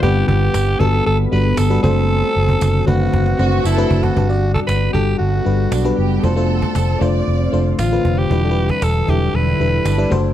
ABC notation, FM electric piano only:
X:1
M:4/4
L:1/16
Q:1/4=116
K:G
V:1 name="FM electric piano"
[G,B,DBf]4- [G,B,DBf] z [G,B,DFA]3 z [G,B,DFB]2 z [G,B,DFB] [A,CDFc]2- | [A,CDFc]4 z2 [A,CDFB]3 z [A,CDFc]2 z [A,CDFB]2 z | [G,DFB] [G,DFd]4 z [G,DFA]3 z [G,DFB]2 z [G,DFB]2 z | [A,D=Fc] [A,DFc]4 z [A,DFc]3 z [A,DFc]2 z [A,DFB]2 z |
[G,DEB] [G,DEAB]4 z [F,G,DEA]3 z [G,DEB]2 z [G,DEB] [A,DFc]2 |]
V:2 name="FM electric piano" clef=bass
G,,6 z8 z2 | z16 | G,,6 z8 z2 | z16 |
E,6 z8 z2 |]